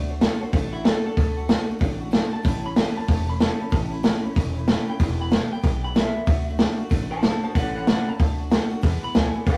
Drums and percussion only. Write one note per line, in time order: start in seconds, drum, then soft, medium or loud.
0.21 snare loud
0.21 open hi-hat medium
0.53 kick loud
0.53 open hi-hat medium
0.85 snare loud
0.85 open hi-hat soft
1.17 kick loud
1.17 open hi-hat medium
1.49 snare loud
1.49 open hi-hat soft
1.81 kick loud
1.81 open hi-hat medium
2.13 snare loud
2.13 open hi-hat soft
2.45 kick loud
2.45 open hi-hat medium
2.76 snare loud
2.76 open hi-hat medium
3.08 kick loud
3.08 open hi-hat medium
3.40 snare loud
3.40 open hi-hat soft
3.72 kick loud
3.72 open hi-hat medium
4.04 snare loud
4.04 open hi-hat medium
4.36 kick loud
4.36 open hi-hat medium
4.68 snare loud
4.68 open hi-hat soft
5.00 kick loud
5.00 open hi-hat medium
5.32 snare loud
5.32 open hi-hat medium
5.64 kick loud
5.64 open hi-hat medium
5.96 snare loud
5.96 open hi-hat medium
6.27 kick loud
6.27 open hi-hat medium
6.59 snare loud
6.59 open hi-hat medium
6.91 kick loud
6.91 open hi-hat medium
7.23 snare loud
7.23 open hi-hat soft
7.55 kick loud
7.55 open hi-hat medium
7.87 snare loud
7.87 open hi-hat soft
8.20 kick loud
8.20 open hi-hat medium
8.51 snare loud
8.51 open hi-hat medium
8.83 kick loud
8.83 open hi-hat medium
9.15 snare loud
9.15 open hi-hat soft
9.46 kick loud
9.46 open hi-hat medium